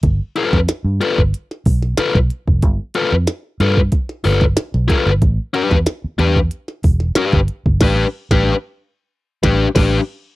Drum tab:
CC |----------------|----------------|----------------|x-----------x---|
HH |x-x-x-x-x-o-x-x-|x-x-x-x-x-o-x-x-|x-x-x-x-x-o-x-x-|----------------|
SD |---oo----o-ooo--|----o----o-ooooo|---oo----o-ooo--|o--o------o-o---|
BD |o--o---o--o--o-o|o------oo--o--o-|o--o---o--o--o-o|o--o------o-o---|